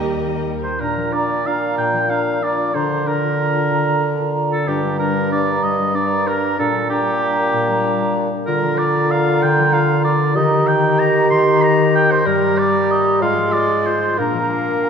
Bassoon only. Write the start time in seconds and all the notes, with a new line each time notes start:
0.80 A#2
2.74 D3
4.67 G2
6.59 A#2
8.47 D3
10.36 D#3
12.26 G3
13.21 G#3
14.19 A#3